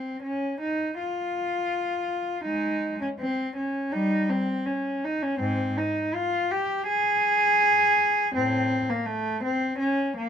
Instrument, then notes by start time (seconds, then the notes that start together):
cello
Already playing: C4
0.23 C#4
0.61 D#4
0.99 F4
2.44 G#3 D#4
3.01 C#4
3.19 C4
3.56 C#4
3.92 G3 D#4
4.29 C4
4.66 C#4
5.04 D#4
5.22 C#4
5.39 G#2 C4
5.78 D#4
6.14 F4
6.51 G4
6.87 G#4
8.35 A2 C4
8.90 A#3
9.06 A3
9.43 C4
9.79 C#4
10.17 A#3